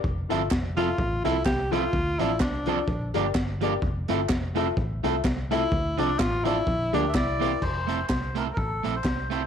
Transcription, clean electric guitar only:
X:1
M:4/4
L:1/16
Q:"Swing" 1/4=127
K:F
V:1 name="Clean electric guitar"
z2 [F,CEA] z3 [F,CEA] z3 [F,CEA] z3 [F,CEA] z | z2 [F,CDA] z3 [F,CDA] z3 [F,B,DG] z3 [F,B,DG] z | z2 [A,CEA] z3 [A,CEA] z3 [A,CEA] z3 [A,CEA] z | z2 [F,CDA] z3 [F,CDA] z3 [F,B,DG] z3 [E,B,CG] z |
z2 [A,CEA] z3 [A,CEA] z3 [A,CEA] z3 [A,CEA] z |]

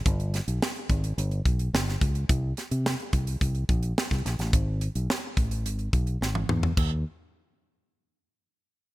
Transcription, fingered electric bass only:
X:1
M:4/4
L:1/16
Q:1/4=107
K:Ablyd
V:1 name="Fingered electric bass" clef=bass
G,,,3 =B,,, z2 A,,,2 G,,,2 B,,,2 G,,,2 _D,,2 | C,,2 z C,2 z C,,2 C,,2 B,,,2 z C,, B,,, =A,,, | A,,,3 _C,, z2 =A,,,2 _A,,,2 C,,2 A,,,2 _F,,2 | E,,2 z12 z2 |]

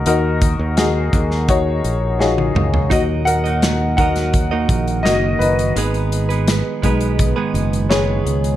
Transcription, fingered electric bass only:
X:1
M:4/4
L:1/16
Q:1/4=84
K:Ebm
V:1 name="Fingered electric bass" clef=bass
E,,3 E,,3 E,,4 B,,,4 D,,2 | E,,8- E,,2 B,,,2 G,,,2 G,,,2 | A,,,4- A,,, z C,,3 z G,,,4 D,,2 |]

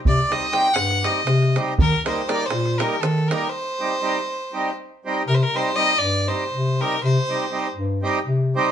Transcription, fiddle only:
X:1
M:7/8
L:1/16
Q:1/4=120
K:Cm
V:1 name="Fiddle"
d2 e2 g2 ^f2 e4 z2 | B2 c2 d2 c2 B2 =A2 B2 | c8- c2 z4 | B/2 c/2 B c2 e2 d2 c4 B2 |
c6 z8 |]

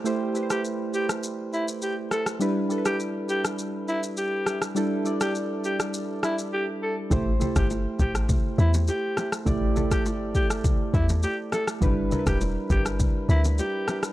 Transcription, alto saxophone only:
X:1
M:4/4
L:1/16
Q:1/4=102
K:Am
V:1 name="Alto saxophone"
z3 G z2 G z3 E z G z A z | z3 G z2 G z3 E z G3 z | z3 G z2 G z3 E z G z A z | z3 G z2 G z3 E z G3 z |
z3 G z2 G z3 E z G z A z | z3 G z2 G z3 E z G3 z |]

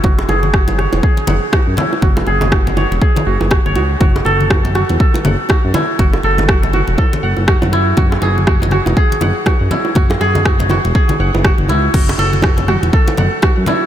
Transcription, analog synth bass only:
X:1
M:4/4
L:1/16
Q:"Swing 16ths" 1/4=121
K:Emix
V:1 name="Analog synth bass" clef=bass
F,,,2 F,,,4- F,,, E,,, z2 F,,, z2 F,, z2 | F,,,2 F,,,4- F,,, E,,, z2 F,,, F,,,2 F,,, C,,2 | F,,,2 F,,,4- F,,, E,,, z2 F,,, z2 F,, z2 | F,,,2 F,,,4- F,,, E,,, z2 F,,, F,,,2 F,,,3 |
F,,,2 F,,,4- F,,, E,,, z2 F,,, z2 F,, z2 | F,,,2 F,,,4- F,,, E,,, z2 F,,, F,,,2 F,,, C,,2 | F,,,2 F,,,4- F,,, E,,, z2 F,,, z2 F,, z2 |]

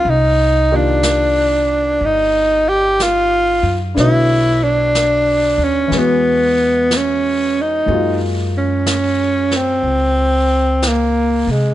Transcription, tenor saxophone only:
X:1
M:4/4
L:1/8
Q:"Swing" 1/4=61
K:Cm
V:1 name="Tenor saxophone"
E D3 E G F z | _F D2 _D =B,2 D E | z _D2 C3 B, A, |]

